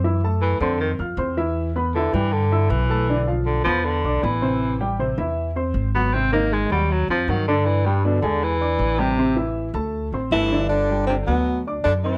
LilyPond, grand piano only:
\new Staff \with { instrumentName = "Grand piano" } { \time 4/4 \key g \major \tempo 4 = 157 <e e' e''>8 <a a' a''>4 <c' c'' c'''>4 <f' f'' f'''>8 <c' c'' c'''>8 <e e' e''>8~ | <e e' e''>8 <b b' b''>8 <e e' e''>8 <g g' g''>4 <e' e'' e'''>4 <a a' a''>8 | <d d' d''>8 <f f' f''>4 <b b' b''>4 <d' d'' d'''>8 <b b' b''>8 <c c' c''>8~ | <c c' c''>8 <g g' g''>8 <c c' c''>8 <e e' e''>4 <c' c'' c'''>4 <fis fis' fis''>8 |
<c c' c''>8 <ees ees' ees''>4 <fis fis' fis''>4 <c' c'' c'''>8 <fis fis' fis''>8 <d d' d''>8~ | <d d' d''>8 <g g' g''>8 <d d' d''>8 <aes aes' aes''>4 <d' d'' d'''>4 <g g' g''>8 | <c c' c''>8 <e e' e''>4 <a a' a''>4 <c' c'' c'''>8 <a a' a''>8 <d d' d''>8 | r8 <g g' g''>8 <d d' d''>8 <fis fis' fis''>4 <d' d'' d'''>4 <c' c'' c'''>8 | }